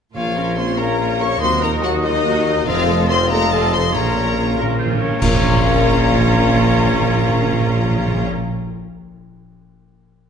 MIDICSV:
0, 0, Header, 1, 14, 480
1, 0, Start_track
1, 0, Key_signature, -5, "minor"
1, 0, Tempo, 421941
1, 175, Time_signature, 6, 3, 24, 8
1, 11716, End_track
2, 0, Start_track
2, 0, Title_t, "Flute"
2, 0, Program_c, 0, 73
2, 171, Note_on_c, 0, 77, 46
2, 620, Note_off_c, 0, 77, 0
2, 657, Note_on_c, 0, 84, 49
2, 725, Note_off_c, 0, 84, 0
2, 883, Note_on_c, 0, 82, 47
2, 1359, Note_off_c, 0, 82, 0
2, 1368, Note_on_c, 0, 85, 53
2, 1594, Note_off_c, 0, 85, 0
2, 1601, Note_on_c, 0, 84, 66
2, 1838, Note_on_c, 0, 82, 60
2, 1855, Note_off_c, 0, 84, 0
2, 2072, Note_on_c, 0, 78, 63
2, 2089, Note_off_c, 0, 82, 0
2, 2302, Note_off_c, 0, 78, 0
2, 2309, Note_on_c, 0, 75, 71
2, 3019, Note_off_c, 0, 75, 0
2, 3031, Note_on_c, 0, 77, 69
2, 3509, Note_on_c, 0, 84, 76
2, 3526, Note_off_c, 0, 77, 0
2, 3752, Note_on_c, 0, 82, 73
2, 3769, Note_off_c, 0, 84, 0
2, 3998, Note_off_c, 0, 82, 0
2, 4003, Note_on_c, 0, 81, 65
2, 4072, Note_off_c, 0, 81, 0
2, 4236, Note_on_c, 0, 84, 65
2, 4469, Note_off_c, 0, 84, 0
2, 4476, Note_on_c, 0, 82, 51
2, 5196, Note_off_c, 0, 82, 0
2, 5932, Note_on_c, 0, 77, 72
2, 9408, Note_off_c, 0, 77, 0
2, 11716, End_track
3, 0, Start_track
3, 0, Title_t, "Violin section"
3, 0, Program_c, 1, 48
3, 183, Note_on_c, 1, 77, 52
3, 626, Note_off_c, 1, 77, 0
3, 646, Note_on_c, 1, 84, 54
3, 887, Note_off_c, 1, 84, 0
3, 899, Note_on_c, 1, 82, 53
3, 1377, Note_off_c, 1, 82, 0
3, 1387, Note_on_c, 1, 85, 66
3, 1602, Note_on_c, 1, 84, 77
3, 1619, Note_off_c, 1, 85, 0
3, 1841, Note_off_c, 1, 84, 0
3, 1850, Note_on_c, 1, 82, 74
3, 1941, Note_off_c, 1, 82, 0
3, 2094, Note_on_c, 1, 78, 69
3, 2185, Note_off_c, 1, 78, 0
3, 2306, Note_on_c, 1, 75, 79
3, 3018, Note_off_c, 1, 75, 0
3, 3037, Note_on_c, 1, 77, 90
3, 3510, Note_off_c, 1, 77, 0
3, 3520, Note_on_c, 1, 84, 80
3, 3757, Note_off_c, 1, 84, 0
3, 3762, Note_on_c, 1, 82, 89
3, 3999, Note_off_c, 1, 82, 0
3, 4004, Note_on_c, 1, 81, 85
3, 4245, Note_off_c, 1, 81, 0
3, 4245, Note_on_c, 1, 84, 75
3, 4485, Note_on_c, 1, 82, 66
3, 4488, Note_off_c, 1, 84, 0
3, 5215, Note_off_c, 1, 82, 0
3, 5924, Note_on_c, 1, 82, 87
3, 9400, Note_off_c, 1, 82, 0
3, 11716, End_track
4, 0, Start_track
4, 0, Title_t, "Oboe"
4, 0, Program_c, 2, 68
4, 173, Note_on_c, 2, 73, 36
4, 850, Note_off_c, 2, 73, 0
4, 871, Note_on_c, 2, 73, 41
4, 1582, Note_on_c, 2, 75, 53
4, 1599, Note_off_c, 2, 73, 0
4, 3747, Note_off_c, 2, 75, 0
4, 3758, Note_on_c, 2, 75, 60
4, 4464, Note_on_c, 2, 73, 47
4, 4481, Note_off_c, 2, 75, 0
4, 5156, Note_off_c, 2, 73, 0
4, 5204, Note_on_c, 2, 70, 52
4, 5436, Note_off_c, 2, 70, 0
4, 5450, Note_on_c, 2, 72, 60
4, 5562, Note_off_c, 2, 72, 0
4, 5691, Note_on_c, 2, 73, 55
4, 5934, Note_off_c, 2, 73, 0
4, 5938, Note_on_c, 2, 73, 73
4, 9415, Note_off_c, 2, 73, 0
4, 11716, End_track
5, 0, Start_track
5, 0, Title_t, "Harp"
5, 0, Program_c, 3, 46
5, 177, Note_on_c, 3, 46, 35
5, 294, Note_on_c, 3, 53, 27
5, 423, Note_on_c, 3, 61, 31
5, 539, Note_on_c, 3, 65, 31
5, 656, Note_on_c, 3, 70, 33
5, 776, Note_on_c, 3, 73, 35
5, 897, Note_on_c, 3, 77, 40
5, 1016, Note_on_c, 3, 82, 38
5, 1115, Note_off_c, 3, 77, 0
5, 1129, Note_on_c, 3, 77, 40
5, 1244, Note_off_c, 3, 73, 0
5, 1258, Note_on_c, 3, 73, 40
5, 1352, Note_off_c, 3, 70, 0
5, 1366, Note_on_c, 3, 70, 39
5, 1483, Note_off_c, 3, 65, 0
5, 1622, Note_on_c, 3, 51, 46
5, 1629, Note_off_c, 3, 77, 0
5, 1632, Note_off_c, 3, 53, 0
5, 1633, Note_off_c, 3, 73, 0
5, 1634, Note_off_c, 3, 46, 0
5, 1636, Note_off_c, 3, 61, 0
5, 1730, Note_on_c, 3, 58, 41
5, 1861, Note_on_c, 3, 63, 42
5, 1981, Note_on_c, 3, 54, 45
5, 2089, Note_off_c, 3, 70, 0
5, 2102, Note_on_c, 3, 70, 48
5, 2215, Note_on_c, 3, 75, 53
5, 2332, Note_on_c, 3, 78, 56
5, 2442, Note_off_c, 3, 82, 0
5, 2456, Note_on_c, 3, 82, 56
5, 2548, Note_off_c, 3, 78, 0
5, 2562, Note_on_c, 3, 78, 57
5, 2669, Note_off_c, 3, 75, 0
5, 2682, Note_on_c, 3, 75, 54
5, 2793, Note_off_c, 3, 70, 0
5, 2807, Note_on_c, 3, 70, 54
5, 2931, Note_on_c, 3, 66, 49
5, 3042, Note_on_c, 3, 53, 60
5, 3060, Note_off_c, 3, 78, 0
5, 3061, Note_off_c, 3, 58, 0
5, 3061, Note_off_c, 3, 75, 0
5, 3064, Note_off_c, 3, 70, 0
5, 3066, Note_off_c, 3, 51, 0
5, 3066, Note_off_c, 3, 66, 0
5, 3067, Note_off_c, 3, 54, 0
5, 3067, Note_off_c, 3, 63, 0
5, 3067, Note_off_c, 3, 82, 0
5, 3163, Note_on_c, 3, 60, 47
5, 3280, Note_on_c, 3, 65, 50
5, 3402, Note_on_c, 3, 69, 51
5, 3533, Note_on_c, 3, 72, 53
5, 3645, Note_on_c, 3, 77, 55
5, 3764, Note_on_c, 3, 81, 58
5, 3883, Note_on_c, 3, 84, 53
5, 3994, Note_off_c, 3, 81, 0
5, 4008, Note_on_c, 3, 81, 53
5, 4113, Note_off_c, 3, 77, 0
5, 4127, Note_on_c, 3, 77, 47
5, 4239, Note_off_c, 3, 72, 0
5, 4253, Note_on_c, 3, 72, 45
5, 4358, Note_off_c, 3, 69, 0
5, 4372, Note_on_c, 3, 69, 41
5, 4484, Note_on_c, 3, 46, 45
5, 4507, Note_off_c, 3, 84, 0
5, 4508, Note_off_c, 3, 60, 0
5, 4510, Note_off_c, 3, 69, 0
5, 4510, Note_off_c, 3, 81, 0
5, 4511, Note_off_c, 3, 72, 0
5, 4598, Note_off_c, 3, 53, 0
5, 4611, Note_on_c, 3, 53, 34
5, 4739, Note_on_c, 3, 61, 38
5, 4848, Note_off_c, 3, 65, 0
5, 4862, Note_on_c, 3, 65, 40
5, 4969, Note_on_c, 3, 70, 38
5, 5094, Note_on_c, 3, 73, 41
5, 5192, Note_off_c, 3, 77, 0
5, 5205, Note_on_c, 3, 77, 45
5, 5334, Note_on_c, 3, 82, 41
5, 5441, Note_off_c, 3, 77, 0
5, 5455, Note_on_c, 3, 77, 41
5, 5563, Note_off_c, 3, 73, 0
5, 5577, Note_on_c, 3, 73, 40
5, 5688, Note_off_c, 3, 70, 0
5, 5702, Note_on_c, 3, 70, 40
5, 5820, Note_off_c, 3, 65, 0
5, 5834, Note_on_c, 3, 65, 42
5, 5937, Note_off_c, 3, 46, 0
5, 5950, Note_on_c, 3, 46, 57
5, 6034, Note_on_c, 3, 58, 51
5, 6098, Note_off_c, 3, 61, 0
5, 6112, Note_on_c, 3, 61, 55
5, 6179, Note_off_c, 3, 65, 0
5, 6192, Note_on_c, 3, 65, 57
5, 6258, Note_off_c, 3, 70, 0
5, 6272, Note_on_c, 3, 70, 55
5, 6337, Note_off_c, 3, 77, 0
5, 6351, Note_on_c, 3, 77, 53
5, 8835, Note_off_c, 3, 73, 0
5, 8835, Note_off_c, 3, 82, 0
5, 8838, Note_off_c, 3, 53, 0
5, 9588, Note_off_c, 3, 61, 0
5, 9669, Note_off_c, 3, 65, 0
5, 9692, Note_off_c, 3, 58, 0
5, 9748, Note_off_c, 3, 70, 0
5, 9827, Note_off_c, 3, 77, 0
5, 10387, Note_off_c, 3, 46, 0
5, 11716, End_track
6, 0, Start_track
6, 0, Title_t, "Violin section"
6, 0, Program_c, 4, 48
6, 161, Note_on_c, 4, 65, 44
6, 614, Note_off_c, 4, 65, 0
6, 651, Note_on_c, 4, 72, 52
6, 881, Note_on_c, 4, 70, 45
6, 894, Note_off_c, 4, 72, 0
6, 1358, Note_off_c, 4, 70, 0
6, 1368, Note_on_c, 4, 73, 54
6, 1584, Note_on_c, 4, 72, 69
6, 1610, Note_off_c, 4, 73, 0
6, 1829, Note_on_c, 4, 70, 62
6, 1832, Note_off_c, 4, 72, 0
6, 2072, Note_on_c, 4, 66, 64
6, 2079, Note_off_c, 4, 70, 0
6, 2319, Note_off_c, 4, 66, 0
6, 2319, Note_on_c, 4, 63, 71
6, 3024, Note_off_c, 4, 63, 0
6, 3035, Note_on_c, 4, 65, 75
6, 3508, Note_off_c, 4, 65, 0
6, 3520, Note_on_c, 4, 72, 75
6, 3611, Note_off_c, 4, 72, 0
6, 3768, Note_on_c, 4, 70, 76
6, 4002, Note_off_c, 4, 70, 0
6, 4018, Note_on_c, 4, 69, 65
6, 4248, Note_off_c, 4, 69, 0
6, 4256, Note_on_c, 4, 72, 59
6, 4347, Note_off_c, 4, 72, 0
6, 4488, Note_on_c, 4, 70, 59
6, 5202, Note_off_c, 4, 70, 0
6, 5953, Note_on_c, 4, 70, 72
6, 9429, Note_off_c, 4, 70, 0
6, 11716, End_track
7, 0, Start_track
7, 0, Title_t, "Clarinet"
7, 0, Program_c, 5, 71
7, 172, Note_on_c, 5, 65, 42
7, 2281, Note_off_c, 5, 65, 0
7, 2319, Note_on_c, 5, 65, 62
7, 2428, Note_off_c, 5, 65, 0
7, 2557, Note_on_c, 5, 63, 60
7, 2793, Note_on_c, 5, 66, 65
7, 2810, Note_off_c, 5, 63, 0
7, 3038, Note_off_c, 5, 66, 0
7, 3046, Note_on_c, 5, 65, 62
7, 3750, Note_off_c, 5, 65, 0
7, 3764, Note_on_c, 5, 65, 61
7, 4474, Note_off_c, 5, 65, 0
7, 4490, Note_on_c, 5, 65, 50
7, 5680, Note_off_c, 5, 65, 0
7, 5930, Note_on_c, 5, 65, 77
7, 9406, Note_off_c, 5, 65, 0
7, 11716, End_track
8, 0, Start_track
8, 0, Title_t, "Viola section"
8, 0, Program_c, 6, 48
8, 166, Note_on_c, 6, 58, 35
8, 167, Note_on_c, 6, 65, 33
8, 394, Note_off_c, 6, 58, 0
8, 394, Note_off_c, 6, 65, 0
8, 406, Note_on_c, 6, 61, 32
8, 406, Note_on_c, 6, 70, 31
8, 645, Note_on_c, 6, 65, 35
8, 649, Note_on_c, 6, 58, 35
8, 651, Note_off_c, 6, 61, 0
8, 651, Note_off_c, 6, 70, 0
8, 891, Note_off_c, 6, 65, 0
8, 893, Note_off_c, 6, 58, 0
8, 894, Note_on_c, 6, 61, 39
8, 896, Note_on_c, 6, 70, 40
8, 1127, Note_on_c, 6, 65, 38
8, 1128, Note_on_c, 6, 58, 37
8, 1135, Note_off_c, 6, 61, 0
8, 1136, Note_off_c, 6, 70, 0
8, 1354, Note_off_c, 6, 58, 0
8, 1354, Note_off_c, 6, 65, 0
8, 1363, Note_on_c, 6, 70, 38
8, 1366, Note_on_c, 6, 61, 41
8, 1607, Note_off_c, 6, 70, 0
8, 1609, Note_off_c, 6, 61, 0
8, 1609, Note_on_c, 6, 66, 46
8, 1611, Note_on_c, 6, 54, 46
8, 1832, Note_off_c, 6, 66, 0
8, 1833, Note_off_c, 6, 54, 0
8, 1845, Note_on_c, 6, 63, 43
8, 1847, Note_on_c, 6, 58, 46
8, 2074, Note_on_c, 6, 66, 50
8, 2079, Note_on_c, 6, 54, 53
8, 2087, Note_off_c, 6, 63, 0
8, 2088, Note_off_c, 6, 58, 0
8, 2320, Note_off_c, 6, 66, 0
8, 2322, Note_off_c, 6, 54, 0
8, 2322, Note_on_c, 6, 58, 58
8, 2323, Note_on_c, 6, 63, 55
8, 2561, Note_on_c, 6, 54, 56
8, 2563, Note_off_c, 6, 58, 0
8, 2563, Note_off_c, 6, 63, 0
8, 2566, Note_on_c, 6, 66, 55
8, 2785, Note_off_c, 6, 54, 0
8, 2788, Note_off_c, 6, 66, 0
8, 2795, Note_on_c, 6, 63, 55
8, 2800, Note_on_c, 6, 58, 58
8, 3032, Note_on_c, 6, 60, 60
8, 3032, Note_on_c, 6, 65, 60
8, 3039, Note_off_c, 6, 63, 0
8, 3041, Note_off_c, 6, 58, 0
8, 3260, Note_off_c, 6, 60, 0
8, 3260, Note_off_c, 6, 65, 0
8, 3271, Note_on_c, 6, 57, 54
8, 3271, Note_on_c, 6, 69, 54
8, 3509, Note_on_c, 6, 60, 54
8, 3512, Note_on_c, 6, 65, 52
8, 3516, Note_off_c, 6, 69, 0
8, 3517, Note_off_c, 6, 57, 0
8, 3756, Note_off_c, 6, 60, 0
8, 3758, Note_off_c, 6, 65, 0
8, 3760, Note_on_c, 6, 69, 58
8, 3761, Note_on_c, 6, 57, 59
8, 4003, Note_off_c, 6, 57, 0
8, 4003, Note_off_c, 6, 69, 0
8, 4004, Note_on_c, 6, 60, 49
8, 4004, Note_on_c, 6, 65, 47
8, 4229, Note_off_c, 6, 60, 0
8, 4229, Note_off_c, 6, 65, 0
8, 4234, Note_on_c, 6, 69, 45
8, 4238, Note_on_c, 6, 57, 48
8, 4464, Note_on_c, 6, 58, 44
8, 4469, Note_on_c, 6, 65, 48
8, 4482, Note_off_c, 6, 69, 0
8, 4484, Note_off_c, 6, 57, 0
8, 4701, Note_off_c, 6, 58, 0
8, 4704, Note_off_c, 6, 65, 0
8, 4707, Note_on_c, 6, 61, 38
8, 4711, Note_on_c, 6, 70, 42
8, 4952, Note_on_c, 6, 58, 42
8, 4959, Note_on_c, 6, 65, 42
8, 4962, Note_off_c, 6, 61, 0
8, 4963, Note_off_c, 6, 70, 0
8, 5194, Note_on_c, 6, 70, 46
8, 5197, Note_on_c, 6, 61, 46
8, 5206, Note_off_c, 6, 58, 0
8, 5209, Note_off_c, 6, 65, 0
8, 5429, Note_on_c, 6, 58, 41
8, 5431, Note_on_c, 6, 65, 41
8, 5448, Note_off_c, 6, 70, 0
8, 5450, Note_off_c, 6, 61, 0
8, 5669, Note_off_c, 6, 58, 0
8, 5671, Note_off_c, 6, 65, 0
8, 5689, Note_on_c, 6, 70, 45
8, 5691, Note_on_c, 6, 61, 45
8, 5914, Note_off_c, 6, 61, 0
8, 5926, Note_on_c, 6, 65, 68
8, 5928, Note_on_c, 6, 61, 68
8, 5937, Note_off_c, 6, 70, 0
8, 9403, Note_off_c, 6, 65, 0
8, 9405, Note_off_c, 6, 61, 0
8, 11716, End_track
9, 0, Start_track
9, 0, Title_t, "French horn section"
9, 0, Program_c, 7, 60
9, 175, Note_on_c, 7, 53, 43
9, 622, Note_off_c, 7, 53, 0
9, 659, Note_on_c, 7, 60, 51
9, 887, Note_on_c, 7, 58, 45
9, 898, Note_off_c, 7, 60, 0
9, 1367, Note_on_c, 7, 61, 54
9, 1371, Note_off_c, 7, 58, 0
9, 1476, Note_off_c, 7, 61, 0
9, 1606, Note_on_c, 7, 60, 66
9, 1837, Note_on_c, 7, 58, 58
9, 1843, Note_off_c, 7, 60, 0
9, 1948, Note_off_c, 7, 58, 0
9, 2076, Note_on_c, 7, 54, 62
9, 2186, Note_off_c, 7, 54, 0
9, 2324, Note_on_c, 7, 51, 69
9, 3027, Note_off_c, 7, 51, 0
9, 3046, Note_on_c, 7, 53, 75
9, 3516, Note_on_c, 7, 60, 81
9, 3524, Note_off_c, 7, 53, 0
9, 3751, Note_on_c, 7, 58, 80
9, 3755, Note_off_c, 7, 60, 0
9, 3998, Note_off_c, 7, 58, 0
9, 4002, Note_on_c, 7, 57, 67
9, 4235, Note_on_c, 7, 60, 60
9, 4245, Note_off_c, 7, 57, 0
9, 4346, Note_off_c, 7, 60, 0
9, 4484, Note_on_c, 7, 58, 56
9, 5200, Note_off_c, 7, 58, 0
9, 5954, Note_on_c, 7, 58, 79
9, 9430, Note_off_c, 7, 58, 0
9, 11716, End_track
10, 0, Start_track
10, 0, Title_t, "Cello section"
10, 0, Program_c, 8, 48
10, 169, Note_on_c, 8, 46, 42
10, 1565, Note_off_c, 8, 46, 0
10, 1607, Note_on_c, 8, 39, 52
10, 3011, Note_off_c, 8, 39, 0
10, 3041, Note_on_c, 8, 41, 69
10, 4458, Note_off_c, 8, 41, 0
10, 4482, Note_on_c, 8, 46, 54
10, 5712, Note_off_c, 8, 46, 0
10, 5940, Note_on_c, 8, 46, 74
10, 9416, Note_off_c, 8, 46, 0
10, 11716, End_track
11, 0, Start_track
11, 0, Title_t, "Timpani"
11, 0, Program_c, 10, 47
11, 167, Note_on_c, 10, 46, 51
11, 847, Note_off_c, 10, 46, 0
11, 3038, Note_on_c, 10, 41, 72
11, 3715, Note_off_c, 10, 41, 0
11, 4568, Note_on_c, 10, 46, 31
11, 4646, Note_off_c, 10, 46, 0
11, 4659, Note_on_c, 10, 46, 34
11, 4728, Note_off_c, 10, 46, 0
11, 4829, Note_on_c, 10, 46, 39
11, 4902, Note_off_c, 10, 46, 0
11, 4916, Note_on_c, 10, 46, 42
11, 4991, Note_off_c, 10, 46, 0
11, 5005, Note_on_c, 10, 46, 45
11, 5073, Note_off_c, 10, 46, 0
11, 5087, Note_on_c, 10, 46, 53
11, 5160, Note_off_c, 10, 46, 0
11, 5174, Note_on_c, 10, 46, 55
11, 5257, Note_off_c, 10, 46, 0
11, 5269, Note_on_c, 10, 46, 59
11, 5342, Note_off_c, 10, 46, 0
11, 5356, Note_on_c, 10, 46, 63
11, 5429, Note_off_c, 10, 46, 0
11, 5442, Note_on_c, 10, 46, 67
11, 5510, Note_off_c, 10, 46, 0
11, 5524, Note_on_c, 10, 46, 78
11, 5598, Note_off_c, 10, 46, 0
11, 5612, Note_on_c, 10, 46, 83
11, 5693, Note_off_c, 10, 46, 0
11, 5707, Note_on_c, 10, 46, 90
11, 5777, Note_off_c, 10, 46, 0
11, 5790, Note_on_c, 10, 46, 92
11, 5869, Note_off_c, 10, 46, 0
11, 5940, Note_on_c, 10, 46, 76
11, 6025, Note_off_c, 10, 46, 0
11, 6099, Note_on_c, 10, 46, 76
11, 6183, Note_off_c, 10, 46, 0
11, 6183, Note_on_c, 10, 46, 69
11, 6269, Note_off_c, 10, 46, 0
11, 6272, Note_on_c, 10, 46, 74
11, 6357, Note_off_c, 10, 46, 0
11, 6357, Note_on_c, 10, 46, 68
11, 6440, Note_off_c, 10, 46, 0
11, 6440, Note_on_c, 10, 46, 76
11, 6519, Note_off_c, 10, 46, 0
11, 6519, Note_on_c, 10, 46, 73
11, 6605, Note_off_c, 10, 46, 0
11, 6607, Note_on_c, 10, 46, 74
11, 6692, Note_off_c, 10, 46, 0
11, 6692, Note_on_c, 10, 46, 74
11, 6776, Note_off_c, 10, 46, 0
11, 6776, Note_on_c, 10, 46, 79
11, 6862, Note_off_c, 10, 46, 0
11, 6866, Note_on_c, 10, 46, 67
11, 6951, Note_off_c, 10, 46, 0
11, 6951, Note_on_c, 10, 46, 84
11, 7034, Note_off_c, 10, 46, 0
11, 7034, Note_on_c, 10, 46, 79
11, 7120, Note_off_c, 10, 46, 0
11, 7121, Note_on_c, 10, 46, 80
11, 7204, Note_off_c, 10, 46, 0
11, 7204, Note_on_c, 10, 46, 67
11, 7289, Note_off_c, 10, 46, 0
11, 7289, Note_on_c, 10, 46, 78
11, 7368, Note_off_c, 10, 46, 0
11, 7368, Note_on_c, 10, 46, 66
11, 7449, Note_off_c, 10, 46, 0
11, 7449, Note_on_c, 10, 46, 79
11, 7535, Note_off_c, 10, 46, 0
11, 7539, Note_on_c, 10, 46, 75
11, 7620, Note_off_c, 10, 46, 0
11, 7620, Note_on_c, 10, 46, 74
11, 7706, Note_off_c, 10, 46, 0
11, 7707, Note_on_c, 10, 46, 73
11, 7790, Note_off_c, 10, 46, 0
11, 7790, Note_on_c, 10, 46, 77
11, 7876, Note_off_c, 10, 46, 0
11, 7881, Note_on_c, 10, 46, 69
11, 7963, Note_off_c, 10, 46, 0
11, 7963, Note_on_c, 10, 46, 82
11, 8049, Note_off_c, 10, 46, 0
11, 8049, Note_on_c, 10, 46, 71
11, 8133, Note_off_c, 10, 46, 0
11, 8133, Note_on_c, 10, 46, 81
11, 8215, Note_off_c, 10, 46, 0
11, 8215, Note_on_c, 10, 46, 64
11, 8295, Note_off_c, 10, 46, 0
11, 8295, Note_on_c, 10, 46, 74
11, 8381, Note_off_c, 10, 46, 0
11, 8384, Note_on_c, 10, 46, 70
11, 8469, Note_off_c, 10, 46, 0
11, 8469, Note_on_c, 10, 46, 72
11, 8555, Note_off_c, 10, 46, 0
11, 8555, Note_on_c, 10, 46, 73
11, 8641, Note_off_c, 10, 46, 0
11, 8647, Note_on_c, 10, 46, 69
11, 8729, Note_off_c, 10, 46, 0
11, 8729, Note_on_c, 10, 46, 70
11, 8815, Note_off_c, 10, 46, 0
11, 8816, Note_on_c, 10, 46, 78
11, 8902, Note_off_c, 10, 46, 0
11, 8907, Note_on_c, 10, 46, 73
11, 8993, Note_off_c, 10, 46, 0
11, 8993, Note_on_c, 10, 46, 78
11, 9078, Note_off_c, 10, 46, 0
11, 9078, Note_on_c, 10, 46, 66
11, 9164, Note_off_c, 10, 46, 0
11, 9168, Note_on_c, 10, 46, 74
11, 9253, Note_off_c, 10, 46, 0
11, 9253, Note_on_c, 10, 46, 73
11, 9338, Note_off_c, 10, 46, 0
11, 9338, Note_on_c, 10, 46, 81
11, 9424, Note_off_c, 10, 46, 0
11, 11716, End_track
12, 0, Start_track
12, 0, Title_t, "Double bass section"
12, 0, Program_c, 11, 48
12, 177, Note_on_c, 11, 34, 39
12, 1569, Note_off_c, 11, 34, 0
12, 1613, Note_on_c, 11, 39, 53
12, 3014, Note_off_c, 11, 39, 0
12, 3030, Note_on_c, 11, 29, 69
12, 4453, Note_off_c, 11, 29, 0
12, 4481, Note_on_c, 11, 34, 55
12, 5712, Note_off_c, 11, 34, 0
12, 5938, Note_on_c, 11, 34, 72
12, 9414, Note_off_c, 11, 34, 0
12, 11716, End_track
13, 0, Start_track
13, 0, Title_t, "Tuba"
13, 0, Program_c, 12, 58
13, 174, Note_on_c, 12, 34, 40
13, 1567, Note_off_c, 12, 34, 0
13, 1607, Note_on_c, 12, 39, 52
13, 3011, Note_off_c, 12, 39, 0
13, 3036, Note_on_c, 12, 29, 67
13, 4477, Note_on_c, 12, 34, 54
13, 4494, Note_off_c, 12, 29, 0
13, 5709, Note_off_c, 12, 34, 0
13, 5941, Note_on_c, 12, 34, 74
13, 9417, Note_off_c, 12, 34, 0
13, 11716, End_track
14, 0, Start_track
14, 0, Title_t, "Drums"
14, 5937, Note_on_c, 9, 35, 78
14, 5937, Note_on_c, 9, 49, 71
14, 6050, Note_off_c, 9, 35, 0
14, 6050, Note_off_c, 9, 49, 0
14, 11716, End_track
0, 0, End_of_file